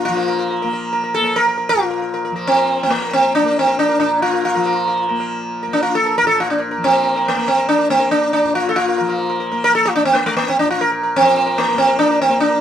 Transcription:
0.00 1.74 A#2 medium
0.00 0.64 A#3 medium
0.05 2.31 F3 medium
0.05 0.68 F4 medium
0.17 0.27 A#4 soft
0.28 0.38 A#4 soft
0.39 0.49 A#4 soft
0.51 0.61 A#4 soft
0.62 1.20 A#3 medium
0.62 0.72 A#4 soft
0.73 0.91 A#4 soft
0.93 1.02 A#4 soft
1.04 1.24 A#4 soft
1.14 1.38 A4 loud
1.20 2.87 A#3 medium
1.25 1.35 A#4 soft
1.36 1.47 A#4 loud
1.48 1.56 A#4 soft
1.57 1.79 A#4 soft
1.69 2.32 F4 loud
1.74 3.98 A#2 medium
1.80 1.89 A#4 soft
1.90 2.00 A#4 soft
2.02 2.13 A#4 soft
2.14 2.23 A#4 soft
2.25 2.35 A#4 soft
2.31 4.55 F3 medium
2.36 2.56 A#4 soft
2.47 2.82 C4 loud
2.57 2.78 A#4 soft
2.83 3.43 A#3 medium
2.83 2.90 C4 medium
2.90 3.11 A#3 medium
3.02 3.22 A#4 soft
3.13 3.34 C4 medium
3.35 3.57 D4 loud
3.43 5.11 A#3 medium
3.43 3.66 A#4 soft
3.59 3.79 C4 medium
3.67 3.87 A#4 soft
3.79 3.98 D4 medium
3.89 4.09 A#4 soft
3.99 6.22 A#2 medium
3.99 4.22 D4 medium
4.22 4.44 F4 medium
4.34 4.53 A#4 soft
4.45 5.05 F4 medium
4.55 6.77 F3 medium
4.55 4.64 A#4 soft
4.66 4.85 A#4 soft
4.88 5.07 A#4 soft
5.09 5.67 A#3 medium
5.09 5.19 A#4 soft
5.20 5.40 A#4 soft
5.63 5.83 A#4 soft
5.67 7.34 A#3 medium
5.73 5.82 D4 medium
5.83 5.95 F4 medium
5.95 6.17 A4 medium
6.06 6.17 A#4 soft
6.18 6.26 A#4 loud
6.23 8.44 A#2 medium
6.27 6.38 A4 loud
6.40 6.50 F4 medium
6.50 6.60 D4 medium
6.60 6.70 A#4 soft
6.71 6.91 A#4 soft
6.78 9.00 F3 medium
6.84 7.27 C4 medium
6.93 7.03 A#4 soft
7.05 7.15 A#4 soft
7.16 7.35 A#4 soft
7.28 7.49 A#3 medium
7.34 7.89 A#3 medium
7.34 7.56 A#4 soft
7.48 7.68 C4 medium
7.58 7.77 A#4 soft
7.69 7.88 D4 medium
7.79 7.99 A#4 soft
7.89 9.52 A#3 medium
7.89 8.11 C4 medium
8.00 8.20 A#4 soft
8.11 8.32 D4 medium
8.22 8.42 A#4 soft
8.33 8.55 D4 medium
8.45 10.62 A#2 medium
8.55 8.71 F4 medium
8.69 8.76 A4 medium
8.76 9.37 F4 medium
8.89 8.97 A#4 soft
8.98 11.19 F3 medium
8.98 9.08 A#4 soft
9.09 9.17 A#4 soft
9.18 9.28 A#4 soft
9.30 9.39 A#4 soft
9.40 9.50 A#4 soft
9.52 10.09 A#3 medium
9.52 9.63 A#4 soft
9.64 9.74 A#4 loud
9.75 9.84 A4 loud
9.85 9.95 F4 loud
9.96 10.05 D4 medium
10.05 11.74 A#3 medium
10.05 10.15 C4 medium
10.15 10.26 A#3 medium
10.26 10.36 A3 medium
10.37 10.48 A#3 medium
10.49 10.59 C4 medium
10.59 12.61 A#2 medium
10.59 10.70 D4 medium
10.71 10.81 F4 medium
10.81 10.91 A#4 medium
10.92 11.02 A#4 soft
11.03 11.23 A#4 soft
11.16 12.61 F3 medium
11.16 11.59 C4 loud
11.25 11.35 A#4 soft
11.36 11.45 A#4 soft
11.46 11.66 A#4 soft
11.58 11.79 A#3 medium
11.68 11.87 A#4 soft
11.74 12.29 A#3 medium
11.78 11.98 C4 medium
11.88 12.08 A#4 soft
11.99 12.21 D4 loud
12.11 12.29 A#4 soft
12.22 12.40 C4 medium
12.29 12.61 A#3 medium
12.29 12.49 A#4 soft
12.40 12.61 D4 medium
12.50 12.61 A#4 soft

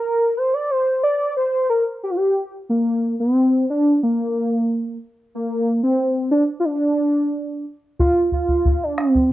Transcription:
0.00 0.38 A#4 loud
0.37 0.55 C5 medium
0.54 0.72 D5 medium
0.71 1.03 C5 medium
1.04 1.34 D5 loud
1.37 1.67 C5 medium
1.70 1.84 A#4 medium
2.03 2.12 G4 medium
2.10 2.18 F4 soft
2.16 2.52 G4 medium
2.69 3.15 A#3 medium
3.20 3.65 C4 medium
3.70 4.00 D4 loud
4.03 4.98 A#3 medium
5.35 5.81 A#3 medium
5.83 6.30 C4 medium
6.31 6.44 D4 loud
6.60 6.66 F4 medium
6.65 7.65 D4 medium
7.99 8.30 F4 loud
7.99 bombo low medium
8.32 8.85 F4 loud
8.32 bombo low soft
8.48 bombo low soft
8.65 bombo low medium
8.84 8.99 D4 medium
8.98 9.30 C4 loud
8.98 bombo rim soft
9.15 bombo low medium

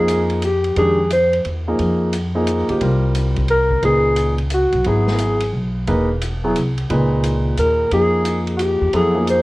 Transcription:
0.00 0.73 F2 medium
0.00 0.41 F3 medium
0.00 0.41 A#3 medium
0.00 0.41 D#4 medium
0.00 0.28 G#4 medium
0.00 0.41 G#4 medium
0.08 hi-hat pedal medium
0.08 ride medium
0.30 ride soft
0.42 0.76 G4 medium
0.42 hi-hat pedal soft
0.42 ride medium
0.64 ride soft
0.76 1.41 F2 medium
0.76 0.97 D#3 medium
0.76 0.97 G#3 soft
0.76 0.97 D4 medium
0.76 0.97 G4 medium
0.76 1.09 G#4 medium
0.76 ride soft
1.10 1.44 C5 medium
1.10 hi-hat pedal medium
1.10 ride medium
1.33 ride soft
1.44 1.77 E2 medium
1.44 ride soft
1.67 2.11 F3 medium
1.67 2.11 A#3 medium
1.67 2.11 D#4 medium
1.67 2.11 G#4 medium
1.78 2.65 F2 medium
1.78 ride soft
2.12 hi-hat pedal medium
2.12 ride medium
2.35 2.67 F3 medium
2.35 2.67 A#3 medium
2.35 2.67 D#4 medium
2.35 2.67 G#4 medium
2.47 hi-hat pedal soft
2.47 ride medium
2.69 2.80 D#2 medium
2.69 2.80 F3 medium
2.69 2.80 A#3 soft
2.69 2.80 D#4 soft
2.69 2.80 G4 medium
2.69 ride soft
2.81 3.79 C2 medium
2.81 3.76 G3 medium
2.81 3.76 C4 soft
2.81 3.76 F4 soft
2.81 3.77 A#4 medium
2.81 ride soft
3.15 hi-hat pedal soft
3.15 ride medium
3.36 kick soft
3.36 ride soft
3.48 3.82 A#4 medium
3.48 ride soft
3.71 kick soft
3.83 4.69 C#2 medium
3.83 4.35 A#2 soft
3.83 4.35 D#4 soft
3.83 4.35 G#4 soft
3.83 4.36 G#4 medium
3.83 4.35 B4 medium
3.83 ride soft
4.16 hi-hat pedal soft
4.16 ride medium
4.38 ride soft
4.50 4.89 F#4 medium
4.50 hi-hat pedal soft
4.50 ride medium
4.72 4.84 B1 medium
4.72 ride soft
4.84 5.49 G#1 medium
4.84 5.37 F#3 soft
4.84 5.37 B3 soft
4.84 5.37 E4 soft
4.84 5.37 G#4 medium
4.84 5.54 G#4 medium
4.84 ride soft
5.07 snare soft
5.18 hi-hat pedal medium
5.18 ride medium
5.40 ride medium
5.53 5.85 B1 medium
5.87 6.52 E1 medium
5.87 6.07 A#3 medium
5.87 6.08 D#4 medium
5.87 6.07 G#4 medium
5.87 6.08 B4 medium
5.87 ride soft
6.21 hi-hat pedal medium
6.21 ride medium
6.44 6.55 F#3 medium
6.44 6.54 B3 medium
6.44 6.55 E4 medium
6.44 6.55 G#4 medium
6.56 6.88 C2 medium
6.56 hi-hat pedal soft
6.56 ride medium
6.78 ride soft
6.90 7.54 C#2 medium
6.90 7.85 A#2 medium
6.90 7.85 D#4 medium
6.90 7.85 G#4 medium
6.90 7.85 B4 medium
6.90 ride soft
7.24 hi-hat pedal medium
7.24 ride medium
7.57 7.89 D#2 medium
7.57 7.90 A#4 medium
7.57 hi-hat pedal medium
7.57 ride medium
7.91 8.78 F2 medium
7.91 8.87 F3 medium
7.91 8.87 A#3 soft
7.91 8.87 D#4 soft
7.91 8.87 G#4 medium
7.91 8.45 G#4 medium
7.91 ride soft
8.25 hi-hat pedal medium
8.25 ride medium
8.47 ride soft
8.57 8.63 F#4 medium
8.57 hi-hat pedal soft
8.57 ride medium
8.62 8.95 G4 medium
8.81 8.93 E2 medium
8.93 9.42 F2 medium
8.93 9.13 F#3 medium
8.93 9.14 B3 medium
8.93 9.14 E4 medium
8.93 9.27 G#4 medium
8.93 9.14 A4 medium
8.93 ride medium
9.15 9.42 F3 medium
9.15 9.42 A#3 soft
9.15 9.42 D#4 soft
9.15 9.42 G#4 medium
9.27 9.42 C5 medium
9.27 hi-hat pedal medium
9.27 ride medium

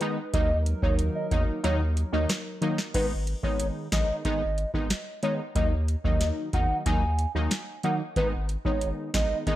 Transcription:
0.00 0.18 D#3 medium
0.00 0.31 G#3 medium
0.00 0.18 G#3 medium
0.00 0.18 B3 medium
0.00 2.91 D#4 medium
0.00 0.18 D#4 medium
0.00 0.14 B4 medium
0.00 0.31 B4 medium
0.00 closed hi-hat medium
0.33 0.74 D#2 loud
0.33 0.51 D#3 medium
0.33 2.92 F#3 medium
0.33 0.51 F#3 medium
0.33 0.51 A#3 medium
0.33 0.51 D#4 loud
0.33 2.92 A#4 medium
0.33 0.57 D#5 loud
0.33 kick loud
0.33 closed hi-hat medium
0.66 closed hi-hat medium
0.82 1.09 D#2 loud
0.82 1.27 D#3 medium
0.82 1.28 F#3 medium
0.82 1.28 A#3 medium
0.82 1.28 D#4 medium
0.82 0.94 C#5 medium
0.82 kick loud
0.99 closed hi-hat medium
1.15 1.27 D#5 medium
1.31 1.45 E2 medium
1.31 1.61 D#3 medium
1.31 1.61 F#3 medium
1.31 1.61 A#3 medium
1.31 1.62 D#4 medium
1.31 1.43 D#5 medium
1.31 kick loud
1.31 closed hi-hat medium
1.63 2.04 D#2 loud
1.63 1.81 D#3 loud
1.63 1.81 F#3 medium
1.63 1.81 A#3 medium
1.63 1.81 D#4 loud
1.63 1.76 C#5 medium
1.63 closed hi-hat medium
1.97 closed hi-hat medium
2.12 2.26 D#2 medium
2.12 2.30 D#3 medium
2.12 2.30 F#3 medium
2.12 2.30 A#3 medium
2.12 2.30 D#4 medium
2.12 2.25 D#5 medium
2.29 cross-stick medium
2.29 snare loud
2.29 closed hi-hat medium
2.61 2.79 D#3 medium
2.61 2.79 F#3 medium
2.61 2.79 A#3 medium
2.61 2.79 D#4 medium
2.61 closed hi-hat medium
2.78 snare medium
2.94 3.35 G#1 loud
2.94 3.12 D#3 medium
2.94 3.12 G#3 medium
2.94 3.12 B3 medium
2.94 3.12 D#4 loud
2.94 3.06 B4 medium
2.94 kick loud
2.94 closed hi-hat medium
2.94 crash medium
3.27 closed hi-hat medium
3.43 3.70 G#1 medium
3.43 3.88 D#3 medium
3.43 3.88 G#3 medium
3.43 3.88 B3 medium
3.43 3.88 D#4 medium
3.43 3.67 C#5 medium
3.43 kick loud
3.60 closed hi-hat medium
3.92 4.06 A#1 medium
3.92 4.22 D#3 medium
3.92 4.22 G#3 medium
3.92 4.22 B3 medium
3.92 4.22 D#4 medium
3.92 4.16 D#5 medium
3.92 kick medium
3.92 snare loud
3.92 closed hi-hat soft
4.25 4.65 G#1 loud
4.25 4.42 D#3 loud
4.25 4.42 G#3 medium
4.25 4.42 B3 medium
4.25 4.42 D#4 loud
4.25 4.71 D#5 loud
4.25 kick loud
4.25 closed hi-hat medium
4.58 closed hi-hat medium
4.74 4.87 G#1 medium
4.74 4.91 D#3 medium
4.74 4.91 G#3 medium
4.74 4.91 B3 medium
4.74 4.91 D#4 medium
4.74 kick medium
4.90 snare loud
4.90 closed hi-hat medium
5.23 5.40 D#3 medium
5.23 5.40 G#3 medium
5.23 5.40 B3 medium
5.23 5.40 D#4 medium
5.23 5.35 C#5 medium
5.23 closed hi-hat medium
5.55 5.96 D#2 loud
5.55 5.73 D#3 medium
5.55 5.73 F#3 medium
5.55 5.73 A#3 medium
5.55 5.73 D#4 loud
5.55 5.67 D#5 loud
5.55 kick loud
5.55 closed hi-hat medium
5.88 closed hi-hat medium
6.04 6.31 D#2 loud
6.04 6.49 D#3 medium
6.04 6.49 F#3 medium
6.04 6.49 A#3 medium
6.04 6.49 D#4 medium
6.04 6.28 D#5 medium
6.04 kick loud
6.21 snare medium
6.21 closed hi-hat medium
6.53 6.67 E2 medium
6.53 6.83 D#3 medium
6.53 6.83 F#3 medium
6.53 6.83 A#3 medium
6.53 6.83 D#4 medium
6.53 6.77 F#5 medium
6.53 kick medium
6.53 closed hi-hat soft
6.86 7.26 D#2 loud
6.86 7.03 D#3 loud
6.86 7.03 F#3 medium
6.86 7.03 A#3 medium
6.86 7.03 D#4 loud
6.86 7.32 G#5 loud
6.86 kick loud
6.86 closed hi-hat medium
7.19 closed hi-hat medium
7.35 7.48 D#2 medium
7.35 7.52 D#3 medium
7.35 7.52 F#3 medium
7.35 7.52 A#3 medium
7.35 7.52 D#4 medium
7.51 snare loud
7.51 closed hi-hat medium
7.83 8.01 D#3 medium
7.83 8.01 F#3 medium
7.83 8.01 A#3 medium
7.83 8.01 D#4 medium
7.83 7.96 F#5 medium
7.83 closed hi-hat medium
8.16 8.56 G#1 loud
8.16 8.33 D#3 medium
8.16 8.34 G#3 medium
8.16 8.34 B3 medium
8.16 8.34 D#4 loud
8.16 8.28 B4 loud
8.16 kick loud
8.16 closed hi-hat medium
8.49 closed hi-hat medium
8.65 8.92 G#1 medium
8.65 9.10 D#3 medium
8.65 9.10 G#3 medium
8.65 9.10 B3 medium
8.65 9.10 D#4 medium
8.65 8.89 C#5 medium
8.65 kick loud
8.81 closed hi-hat medium
9.14 9.27 A#1 medium
9.14 9.44 D#3 medium
9.14 9.44 G#3 medium
9.14 9.44 B3 medium
9.14 9.44 D#4 medium
9.14 9.38 D#5 medium
9.14 kick medium
9.14 snare loud
9.14 closed hi-hat medium
9.46 9.56 G#1 loud
9.46 9.56 D#3 loud
9.46 9.56 G#3 medium
9.46 9.56 B3 medium
9.46 9.56 D#4 loud
9.46 9.56 D#5 loud
9.46 kick loud
9.46 closed hi-hat medium

